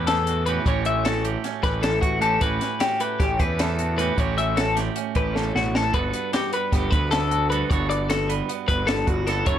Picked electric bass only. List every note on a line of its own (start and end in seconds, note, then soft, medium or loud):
0.00 0.58 E2 medium
0.66 1.36 A1 medium
1.64 1.99 A1 medium
2.02 2.38 A1 medium
2.41 2.59 A1 medium
3.20 3.38 A1 medium
3.40 4.10 E2 medium
4.18 4.88 A1 medium
5.16 5.51 A1 medium
5.55 5.90 A1 medium
5.94 6.12 G1 medium
6.73 6.90 G1 medium
6.92 7.62 D2 medium
7.71 8.40 G1 medium
8.68 9.03 G1 medium
9.07 9.42 G1 medium
9.46 9.59 F#1 medium